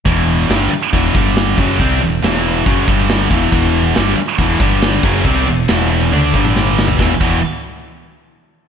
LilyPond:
<<
  \new Staff \with { instrumentName = "Distorted electric guitar" } { \clef bass \time 4/4 \key e \minor \tempo 4 = 138 <e, b, e>4 <g, d g>8 r8 <e, b, e>8 <g, d g>4 <fis, cis fis>8 | <c g c'>8 <e, b,>8 <e, b, e>4 <fis, cis fis>8 <g, d g>4 <e, b, e>8 | <e, b, e>4 <g, d g>8 r8 <e, b, e>8 <g, d g>4 <fis, cis fis>8 | <c g c'>8 <e, b,>8 <e, b, e>4 <d a d'>8 <g, d g>4. |
<e, b, e>8 <e, b, e>8 r2. | }
  \new Staff \with { instrumentName = "Overdriven electric guitar" } { \clef bass \time 4/4 \key e \minor <e, b, e>4 <g, d g>8 r8 <e, b, e>8 <g, d g>4 <fis, cis fis>8 | <c g c'>8 <e, b,>8 <e, b, e>4 <fis, cis fis>8 <g, d g>4 <e, b, e>8 | <e, b, e>4 <g, d g>8 r8 <e, b, e>8 <g, d g>4 <fis, cis fis>8 | <c g c'>8 <e, b,>8 <e, b, e>4 <d a d'>8 <g, d g>4. |
<e, b, e>8 <e, b, e>8 r2. | }
  \new Staff \with { instrumentName = "Fingered electric bass" } { \clef bass \time 4/4 \key e \minor e,,4 g,,8 r8 e,,8 g,,4 fis,,8 | c,8 e,,8 e,,4 fis,,8 g,,4 e,,8 | e,,4 g,,8 r8 e,,8 g,,4 fis,,8 | c,8 e,,8 e,,4 d,8 g,,4. |
e,,8 e,,8 r2. | }
  \new DrumStaff \with { instrumentName = "Drums" } \drummode { \time 4/4 <hho bd>4 <hho sn>4 <hho bd>8 bd8 <hho sn>8 bd8 | <hho bd>4 <hho sn>4 <hho bd>8 bd8 <hho sn>8 bd8 | <hho bd>4 <hho sn>4 <hho bd>8 bd8 <hho sn>8 <cymc bd>8 | bd4 <hho sn>4 tommh8 bd16 toml16 sn8 sn16 tomfh16 |
<bd sn>8 <cymc bd>8 r4 r4 r4 | }
>>